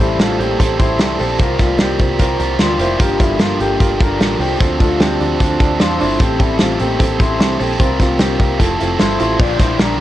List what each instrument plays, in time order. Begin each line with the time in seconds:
Already playing: overdriven electric guitar A2 E3 G3 C4 E4 A4
0.00 picked electric bass A1, clean electric guitar G3 E4, reed electric piano G4 A4 C5, closed hi-hat
0.19 picked electric bass A1, overdriven electric guitar A2 E3 G3 C4 E4 A4, clean electric guitar A3 F4, reed electric piano G4 A4 D5, snare, closed hi-hat
0.39 picked electric bass A1, clean electric guitar A#3 G4, reed electric piano G4 A4 C5, closed hi-hat
0.59 picked electric bass A1, overdriven electric guitar G3 C4 E4 A4, reed electric piano G4 A4 C5, kick, closed hi-hat
0.78 picked electric bass A1, overdriven electric guitar G3 C4 E4 A4, clean electric guitar E4 C5, reed electric piano G4 A4 C5, kick, closed hi-hat
0.99 picked electric bass C2, overdriven electric guitar A2 E3 G3 C4 E4 A4, reed electric piano G4 A4 D5, snare, closed hi-hat
1.19 picked electric bass A#1, clean electric guitar C4 A4, overdriven electric guitar C4 E4 A4, reed electric piano G4 A4 C5, open hi-hat
1.23 overdriven electric guitar G3
1.39 picked electric bass C2, overdriven electric guitar C3 G3 A#3 F4, reed electric piano F4 A#4 C5, clean electric guitar F4 A#4, kick, closed hi-hat
1.43 overdriven electric guitar G4
1.59 picked electric bass C2, clean electric guitar A3 F4, reed electric piano F4 A#4 D5, kick, snare, closed hi-hat
1.78 picked electric bass C2, overdriven electric guitar C3 G3 A#3 F4 G4, clean electric guitar A#3 G4, reed electric piano F4 A#4 D5, snare, closed hi-hat
1.99 picked electric bass C2, reed electric piano F4 A#4 C5 A#5, kick, closed hi-hat
2.19 picked electric bass C2, overdriven electric guitar G3 A#3 F4 G4, reed electric piano F4 A#4 C5 G5, clean electric guitar F4 A#4, kick, closed hi-hat
2.39 picked electric bass C2, reed electric piano F4 A#4 C5, overdriven electric guitar F4 G4, closed hi-hat
2.43 overdriven electric guitar A#3
2.58 picked electric bass D2, overdriven electric guitar C3 G3 A#3 F4 G4, reed electric piano F4 A#4 D5 F5, clean electric guitar F4 C5, snare, closed hi-hat
2.78 picked electric bass F1, overdriven electric guitar A#3 F4 G4, clean electric guitar E4 C5, reed electric piano F4 A#4 C5, closed hi-hat
2.98 picked electric bass G1, overdriven electric guitar G2 D3 F3 A#3 D4 G4, clean electric guitar A#3 G4, reed electric piano F4 G4 A#4, kick, closed hi-hat
3.19 picked electric bass G1, clean electric guitar G3 E4, reed electric piano F4 G4 A4, kick, closed hi-hat
3.38 picked electric bass G1, overdriven electric guitar G2 D3 F3 A#3 D4 G4, clean electric guitar A#3 F4, reed electric piano F4 G4 A#4, snare, closed hi-hat
3.60 picked electric bass G1, clean electric guitar A#3 G4, reed electric piano F4 G4 A4, closed hi-hat
3.79 picked electric bass G1, overdriven electric guitar F3 A#3 D4 G4, reed electric piano F4 G4 A#4, kick, closed hi-hat
3.98 picked electric bass G1, overdriven electric guitar F3 A#3 D4 G4, clean electric guitar D4 A#4, reed electric piano F4 G4 A4, kick, closed hi-hat
4.18 picked electric bass A1, overdriven electric guitar G2 D3 F3 A#3 D4 G4, reed electric piano F4 G4 A#4, snare, closed hi-hat
4.39 picked electric bass C2, overdriven electric guitar F3 A#3 D4 G4, clean electric guitar A#3 G4, reed electric piano F4 G4 C5, open hi-hat
4.58 picked electric bass D2, overdriven electric guitar D3 F3 C4 D4 A4, clean electric guitar C4 A4, reed electric piano D4 F4 C5, kick, closed hi-hat
4.80 picked electric bass D2, clean electric guitar A3 F4, reed electric piano D4 F4 A4, kick, closed hi-hat
4.99 picked electric bass D2, overdriven electric guitar D3 F3 C4 D4 A4, clean electric guitar C4 G4, reed electric piano D4 F4 C5, snare, closed hi-hat
5.20 picked electric bass D2, reed electric piano D4 F4 D5, closed hi-hat
5.39 picked electric bass D2, overdriven electric guitar F3 C4 D4 A4, clean electric guitar C4 A4, reed electric piano D4 F4 C5, kick, closed hi-hat
5.59 picked electric bass D2, overdriven electric guitar C4 D4 A4, reed electric piano D4 F4 D5 F5, kick, closed hi-hat
5.78 picked electric bass E2, overdriven electric guitar D3 F3 C4 D4 A4, reed electric piano D4 F4 C5 C6, clean electric guitar F4 C5, snare, closed hi-hat
5.99 picked electric bass G1, overdriven electric guitar C4 D4 A4, reed electric piano D4 F4 D5, clean electric guitar E4 C5, open hi-hat
6.19 picked electric bass A1, overdriven electric guitar A2 E3 G3 C4 E4 A4, reed electric piano C4 G4 A4, clean electric guitar C4 G4, kick, closed hi-hat
6.40 picked electric bass A1, clean electric guitar G3 E4, reed electric piano C4 G4 A4, kick, closed hi-hat
6.58 picked electric bass A1, overdriven electric guitar A2 E3 G3 C4 E4 A4, clean electric guitar A3 F4, reed electric piano C4 G4 A4, snare, closed hi-hat
6.80 picked electric bass A1, clean electric guitar A#3 G4, reed electric piano C4 G4 A4, closed hi-hat
6.97 picked electric bass A1, overdriven electric guitar G3 C4 E4 A4, reed electric piano C4 G4 A4, kick, closed hi-hat
7.18 picked electric bass A1, overdriven electric guitar G3 C4 E4 A4, reed electric piano C4 G4 A4, clean electric guitar E4 C5, kick, closed hi-hat
7.39 picked electric bass C2, overdriven electric guitar A2 E3 G3 C4 E4 A4, reed electric piano C4 G4 C5, snare, closed hi-hat
7.59 picked electric bass A#1, overdriven electric guitar G3 C4 E4 A4, reed electric piano C4 G4 A4, clean electric guitar C4 A4, open hi-hat
7.79 picked electric bass C2, overdriven electric guitar C3 G3 A#3 F4 G4, reed electric piano C4 F4 A#4, clean electric guitar F4 A#4, kick, closed hi-hat
8.00 picked electric bass C2, clean electric guitar A3 F4, reed electric piano C4 F4 A#4, kick, snare, closed hi-hat
8.19 picked electric bass C2, overdriven electric guitar C3 G3 A#3 F4 G4, clean electric guitar A#3 G4, reed electric piano C4 F4 A#4, snare, closed hi-hat
8.39 picked electric bass C2, reed electric piano C4 F4 A#4, kick, closed hi-hat
8.59 picked electric bass F1, overdriven electric guitar F3 C4 E4 A4, clean electric guitar C4 A4, reed electric piano E4 F4 A4, kick, closed hi-hat
8.79 picked electric bass F1, overdriven electric guitar C4 E4 A4, reed electric piano E4 F4 A4, closed hi-hat
8.99 picked electric bass G1, overdriven electric guitar F3 C4 E4 A4, reed electric piano E4 F4 A4, clean electric guitar E4 C5, snare, closed hi-hat
9.19 picked electric bass A1, overdriven electric guitar C4 E4 A4, reed electric piano E4 F4 G4, clean electric guitar E4 C5, closed hi-hat
9.39 picked electric bass A#1, overdriven electric guitar A#2 D3 F3 A#3 D4 G4, clean electric guitar F4 D5, kick, crash
9.59 picked electric bass A#1, overdriven electric guitar F3 A#3 D4 G4, clean electric guitar E4 C5, kick, snare, closed hi-hat
9.79 picked electric bass A#1, overdriven electric guitar A#2 D3 F3 A#3 D4 G4, clean electric guitar D4 A#4, snare, closed hi-hat